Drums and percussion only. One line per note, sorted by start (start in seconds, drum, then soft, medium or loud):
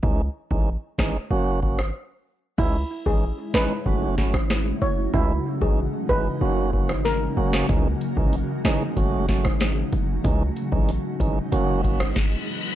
0.03 kick loud
0.51 kick loud
0.99 kick medium
0.99 cross-stick loud
0.99 snare loud
1.63 kick medium
1.79 cross-stick loud
2.58 kick loud
2.58 crash medium
3.06 kick loud
3.54 cross-stick loud
3.54 snare loud
3.86 kick loud
4.18 kick medium
4.18 snare medium
4.34 cross-stick loud
4.50 cross-stick loud
4.50 snare loud
5.14 kick loud
5.61 kick medium
6.09 kick medium
6.73 kick medium
6.89 cross-stick loud
7.05 snare medium
7.53 cross-stick medium
7.53 snare loud
7.69 kick loud
7.69 closed hi-hat medium
8.01 closed hi-hat medium
8.17 kick loud
8.33 closed hi-hat medium
8.65 cross-stick loud
8.65 snare loud
8.65 closed hi-hat medium
8.97 kick loud
8.97 closed hi-hat medium
9.29 kick medium
9.29 snare medium
9.29 closed hi-hat medium
9.45 cross-stick loud
9.60 cross-stick loud
9.60 snare loud
9.60 closed hi-hat medium
9.93 closed hi-hat medium
10.24 kick loud
10.24 closed hi-hat medium
10.56 closed hi-hat medium
10.72 kick medium
10.89 closed hi-hat medium
11.20 kick medium
11.20 closed hi-hat medium
11.52 closed hi-hat medium
11.84 kick medium
11.84 closed hi-hat medium
12.00 cross-stick loud
12.16 kick loud
12.16 snare medium